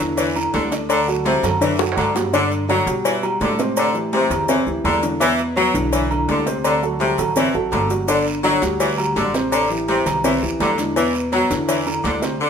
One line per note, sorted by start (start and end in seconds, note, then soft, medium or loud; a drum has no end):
0.00 0.50 E2 loud
0.00 0.29 D3 medium
0.00 0.29 D4 medium
0.00 0.29 E4 medium
0.00 cowbell medium
0.00 high conga soft
0.00 short guiro medium
0.00 maracas medium
0.17 0.36 E3 medium
0.17 cowbell loud
0.17 high conga soft
0.17 low agogo medium
0.17 long guiro medium
0.17 maracas loud
0.36 0.65 D3 medium
0.36 0.66 D4 medium
0.36 0.66 E4 medium
0.36 high conga soft
0.36 low agogo loud
0.36 maracas soft
0.53 1.38 D2 loud
0.53 0.72 D3 medium
0.53 cowbell medium
0.53 high conga medium
0.53 low timbale medium
0.53 short guiro medium
0.53 maracas soft
0.71 1.01 D3 medium
0.71 1.01 D4 medium
0.71 1.01 D5 medium
0.71 cowbell medium
0.71 low agogo medium
0.71 short guiro medium
0.71 maracas medium
0.89 1.08 D3 medium
0.89 cowbell loud
0.89 high conga soft
0.89 low agogo loud
0.89 long guiro medium
0.89 maracas loud
1.08 1.37 F#3 medium
1.08 1.37 F#4 medium
1.08 1.37 A4 medium
1.08 high conga soft
1.08 maracas soft
1.26 1.44 C3 medium
1.26 cowbell medium
1.26 high conga medium
1.26 low timbale medium
1.26 low agogo medium
1.26 short guiro medium
1.26 maracas soft
1.43 1.93 F#2 loud
1.43 1.58 F#3 medium
1.43 1.58 F#4 medium
1.43 1.58 A4 medium
1.43 cowbell medium
1.43 high conga soft
1.43 low conga medium
1.43 low agogo loud
1.43 short guiro medium
1.43 maracas medium
1.61 1.76 D3 medium
1.61 1.80 E3 medium
1.61 1.76 D4 medium
1.61 1.76 D5 medium
1.61 cowbell loud
1.61 high conga soft
1.61 low conga medium
1.61 long guiro medium
1.61 maracas medium
1.79 2.09 F#3 medium
1.79 2.09 F#4 medium
1.79 2.09 A4 medium
1.79 high bongo medium
1.79 high conga soft
1.79 high timbale medium
1.79 maracas soft
1.92 high timbale loud
1.97 2.81 G2 loud
1.97 2.16 D3 medium
1.97 cowbell medium
1.97 high conga medium
1.97 low agogo loud
1.97 short guiro medium
1.97 maracas soft
2.15 2.30 F#3 medium
2.15 2.30 F#4 medium
2.15 2.30 G4 medium
2.15 cowbell medium
2.15 low bongo medium
2.15 high conga medium
2.15 low timbale medium
2.15 short guiro medium
2.15 maracas medium
2.33 2.62 D3 medium
2.33 2.53 D3 loud
2.33 2.63 D4 medium
2.33 2.63 D5 medium
2.33 cowbell loud
2.33 maracas medium
2.51 high conga soft
2.51 low agogo medium
2.51 maracas soft
2.69 2.84 D3 medium
2.69 2.88 F#3 medium
2.69 2.84 D4 medium
2.69 2.84 D5 medium
2.69 cowbell medium
2.69 high conga medium
2.69 low timbale medium
2.69 low agogo loud
2.69 maracas soft
2.87 3.37 B2 loud
2.87 3.17 G3 medium
2.87 3.17 F#4 medium
2.87 3.17 G4 medium
2.87 cowbell medium
2.87 high conga soft
2.87 maracas medium
3.05 3.24 E3 medium
3.05 cowbell loud
3.05 high conga soft
3.05 low agogo medium
3.05 maracas medium
3.23 3.52 G3 medium
3.23 3.53 F#4 medium
3.23 3.53 G4 medium
3.23 high conga soft
3.23 low agogo loud
3.23 maracas soft
3.41 4.25 A2 loud
3.41 3.60 D3 medium
3.41 cowbell medium
3.41 high conga loud
3.41 low timbale medium
3.41 maracas soft
3.58 3.88 C3 medium
3.58 3.88 C4 loud
3.58 3.89 C5 medium
3.58 cowbell medium
3.58 high conga medium
3.58 low agogo medium
3.58 maracas medium
3.77 3.96 D3 medium
3.77 cowbell loud
3.77 high conga soft
3.77 low agogo loud
3.77 maracas loud
3.94 4.24 E3 medium
3.94 4.24 E4 medium
3.94 4.24 G4 medium
3.94 high conga soft
3.94 maracas soft
4.13 4.33 C3 loud
4.13 cowbell medium
4.13 high conga medium
4.13 low timbale medium
4.13 low agogo medium
4.13 maracas soft
4.30 4.64 E2 loud
4.30 4.45 E3 medium
4.30 4.46 E4 medium
4.30 4.46 G4 medium
4.30 cowbell medium
4.30 high conga soft
4.30 low conga medium
4.30 low agogo loud
4.30 maracas medium
4.49 4.63 C3 medium
4.49 4.68 E3 medium
4.49 4.64 C4 medium
4.49 4.64 C5 medium
4.49 cowbell loud
4.49 high conga soft
4.49 maracas loud
4.67 4.84 D2 medium
4.67 4.97 E3 medium
4.67 4.97 E4 medium
4.67 4.97 G4 medium
4.67 high conga soft
4.67 maracas soft
4.84 5.69 E2 loud
4.84 5.04 D3 medium
4.84 cowbell medium
4.84 high conga medium
4.84 low timbale medium
4.84 low agogo loud
4.84 maracas soft
5.03 5.17 D3 medium
5.03 5.18 D4 medium
5.03 5.18 E4 medium
5.03 cowbell medium
5.03 high conga medium
5.03 maracas medium
5.20 5.50 B2 medium
5.20 5.39 E3 loud
5.20 5.50 B3 medium
5.20 5.50 B4 medium
5.20 cowbell loud
5.20 maracas medium
5.39 high conga soft
5.39 low agogo medium
5.39 maracas soft
5.56 5.71 B2 medium
5.56 5.76 F#3 loud
5.56 5.71 B3 medium
5.56 5.72 B4 medium
5.56 cowbell medium
5.56 high conga medium
5.56 low timbale medium
5.56 low agogo loud
5.56 maracas soft
5.74 6.25 B1 loud
5.74 6.04 D3 medium
5.74 6.04 D4 medium
5.74 6.04 E4 medium
5.74 cowbell medium
5.74 high conga soft
5.74 maracas medium
5.92 6.11 E3 medium
5.92 cowbell loud
5.92 high conga soft
5.92 low agogo medium
5.92 maracas loud
6.11 6.40 D3 medium
6.11 6.40 D4 medium
6.11 6.40 E4 medium
6.11 high conga soft
6.11 low agogo loud
6.11 maracas soft
6.28 7.13 D2 loud
6.28 6.47 D3 medium
6.28 cowbell medium
6.28 high conga medium
6.28 low timbale medium
6.28 maracas soft
6.46 6.76 C3 loud
6.46 6.76 C4 medium
6.46 6.76 C5 medium
6.46 cowbell medium
6.46 low agogo medium
6.46 maracas medium
6.64 6.83 D3 medium
6.64 cowbell loud
6.64 high conga soft
6.64 low agogo loud
6.64 maracas medium
6.82 7.12 F#3 medium
6.82 7.12 F#4 medium
6.82 7.12 A4 medium
6.82 high conga soft
6.82 maracas soft
7.00 7.19 C3 medium
7.00 cowbell medium
7.00 high conga medium
7.00 low timbale medium
7.00 low agogo medium
7.00 maracas soft
7.18 7.52 A1 loud
7.18 7.33 F#3 medium
7.18 7.33 F#4 medium
7.18 7.33 A4 medium
7.18 cowbell medium
7.18 high conga soft
7.18 low conga medium
7.18 low agogo loud
7.18 maracas medium
7.36 7.51 C3 medium
7.36 7.55 E3 medium
7.36 7.51 C4 medium
7.36 7.51 C5 medium
7.36 cowbell loud
7.36 high conga soft
7.36 low conga medium
7.36 maracas loud
7.54 7.71 A1 medium
7.54 7.84 F#3 medium
7.54 7.84 F#4 medium
7.54 7.84 A4 medium
7.54 high conga soft
7.54 maracas soft
7.72 8.57 G1 loud
7.72 7.91 D3 medium
7.72 cowbell medium
7.72 high conga medium
7.72 low timbale medium
7.72 low agogo loud
7.72 maracas soft
7.90 8.05 F#3 medium
7.90 8.05 F#4 medium
7.90 8.05 G4 medium
7.90 cowbell medium
7.90 high conga medium
7.90 maracas medium
8.08 8.27 D3 medium
8.08 8.38 D3 medium
8.08 8.38 D4 medium
8.08 8.38 D5 medium
8.08 cowbell loud
8.08 high conga soft
8.08 long guiro medium
8.08 maracas medium
8.26 high conga soft
8.26 low agogo medium
8.26 maracas soft
8.44 8.59 D3 medium
8.44 8.63 F#3 loud
8.44 8.59 D4 medium
8.44 8.59 D5 medium
8.44 cowbell medium
8.44 high conga medium
8.44 low timbale medium
8.44 low agogo loud
8.44 short guiro medium
8.44 maracas soft
8.62 9.13 D2 loud
8.62 8.91 G3 medium
8.62 8.92 F#4 medium
8.62 8.92 G4 medium
8.62 cowbell medium
8.62 short guiro medium
8.62 maracas medium
8.80 8.99 E3 medium
8.80 cowbell loud
8.80 high conga soft
8.80 low agogo medium
8.80 long guiro medium
8.80 maracas medium
8.98 9.28 G3 medium
8.98 9.28 F#4 medium
8.98 9.28 G4 medium
8.98 high conga soft
8.98 low agogo loud
8.98 maracas soft
9.16 10.01 A1 loud
9.16 9.35 D3 medium
9.16 cowbell medium
9.16 high conga medium
9.16 low timbale medium
9.16 short guiro medium
9.16 maracas soft
9.34 9.64 C3 medium
9.34 9.64 C4 medium
9.34 9.64 C5 medium
9.34 cowbell medium
9.34 low agogo medium
9.34 short guiro medium
9.34 maracas medium
9.52 9.71 D3 medium
9.52 cowbell loud
9.52 high conga soft
9.52 low agogo loud
9.52 long guiro medium
9.52 maracas medium
9.70 10.00 E3 medium
9.70 10.00 E4 medium
9.70 10.00 G4 medium
9.70 high conga soft
9.70 maracas soft
9.88 10.07 C3 loud
9.88 cowbell medium
9.88 high conga medium
9.88 low timbale medium
9.88 low agogo medium
9.88 short guiro medium
9.88 maracas soft
10.06 10.40 C2 medium
10.06 10.21 E3 medium
10.06 10.21 E4 medium
10.06 10.21 G4 medium
10.06 cowbell medium
10.06 high conga soft
10.06 low conga loud
10.06 low agogo loud
10.06 short guiro medium
10.06 maracas medium
10.24 10.39 C3 medium
10.24 10.43 E3 medium
10.24 10.39 C4 medium
10.24 10.39 C5 medium
10.24 cowbell loud
10.24 high conga soft
10.24 low conga medium
10.24 long guiro medium
10.24 maracas loud
10.42 10.59 D2 medium
10.42 10.72 E3 medium
10.42 10.72 E4 medium
10.42 10.72 G4 medium
10.42 high conga soft
10.42 maracas soft
10.60 11.45 E2 loud
10.60 10.79 D3 medium
10.60 cowbell medium
10.60 high conga medium
10.60 low timbale loud
10.60 low agogo loud
10.60 short guiro medium
10.60 maracas soft
10.78 10.93 D3 medium
10.78 10.93 D4 medium
10.78 10.94 E4 medium
10.78 cowbell medium
10.78 high conga medium
10.78 short guiro medium
10.78 maracas medium
10.96 11.26 B2 medium
10.96 11.15 E3 medium
10.96 11.26 B3 medium
10.96 11.26 B4 medium
10.96 cowbell loud
10.96 long guiro medium
10.96 maracas medium
11.15 high conga soft
11.15 low agogo medium
11.15 maracas soft
11.32 11.47 B2 medium
11.32 11.52 F#3 medium
11.32 11.47 B3 medium
11.32 11.47 B4 medium
11.32 cowbell medium
11.32 high conga medium
11.32 low timbale medium
11.32 low agogo loud
11.32 short guiro medium
11.32 maracas soft
11.50 12.01 E2 loud
11.50 11.80 D3 medium
11.50 11.80 D4 medium
11.50 11.80 E4 medium
11.50 cowbell medium
11.50 short guiro medium
11.50 maracas medium
11.68 11.87 E3 medium
11.68 cowbell loud
11.68 high conga soft
11.68 low agogo medium
11.68 long guiro medium
11.68 maracas medium
11.86 12.16 D3 medium
11.86 12.16 D4 medium
11.86 12.16 E4 medium
11.86 high conga soft
11.86 low agogo loud
11.86 maracas soft
12.04 12.38 D2 loud
12.04 12.23 D3 medium
12.04 cowbell medium
12.04 high conga medium
12.04 low timbale medium
12.04 short guiro medium
12.04 maracas soft
12.22 12.37 C3 medium
12.22 12.37 C4 loud
12.22 12.37 C5 medium
12.22 cowbell medium
12.22 low agogo medium
12.22 short guiro medium
12.22 maracas medium
12.40 12.50 D3 loud